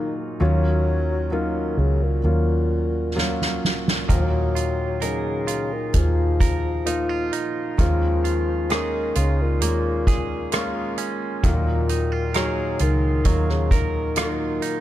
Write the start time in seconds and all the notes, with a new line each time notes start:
Already playing: D#3 F#3 A#3 D#4 F4 G#4
0.40 D#2 D#3 F#3 A#3 C#4 F4
1.31 D#3 F#3 A#3 C#4 F4
1.77 C#2 C#3
2.03 A#2
2.24 D#2 F#3 A#3 C#4 F4
3.15 F#3 A#3 C#4 F4, snare
3.41 snare
3.65 snare
3.88 snare
4.08 D#2 A#2 D#3 F#3 A#3 D#4 F4, kick, closed hi-hat
4.12 F#3
4.55 F4, closed hi-hat
5.01 C#3 F#3 A#3 D#4 G#4 A#4, closed hi-hat
5.47 C#2 F4, closed hi-hat
5.73 D#3
5.93 D#2 F3 A#3 D#4 G#4, kick, closed hi-hat
5.98 F3
6.41 A#4, kick, closed hi-hat
6.85 F3 A#3 D#4 F4, closed hi-hat
7.09 F4
7.33 D#4, closed hi-hat
7.78 D#2 D#3 F3 G#3 A#3 C#4 F4, kick, closed hi-hat
8.24 F4, closed hi-hat
8.69 D#3 G#3 A#3 C#4 D#4 G#4, cross-stick, closed hi-hat
9.15 C#2 C#3 F4, closed hi-hat
9.42 A#2
9.61 D#2 G#3 A#3 C#4 F4, closed hi-hat
10.07 G#4, kick, closed hi-hat
10.52 G#3 A#3 C#4 F4, cross-stick, closed hi-hat
10.98 C#4, closed hi-hat
11.43 D#2 A#2 D#3 F#3 A#3 D#4 F4, kick, closed hi-hat
11.89 D#4, closed hi-hat
12.12 F4
12.34 F#3 A#3 D#4 G#4 A#4, cross-stick, closed hi-hat
12.79 C#2 D#3 F4, closed hi-hat
13.25 D#2 F#3 A#3 D#4 F4, kick, closed hi-hat
13.50 C#3, cross-stick
13.71 D#3 A#4, kick, closed hi-hat
14.16 F#3 A#3 D#4 F4, cross-stick, closed hi-hat
14.20 D#3
14.62 D#4, closed hi-hat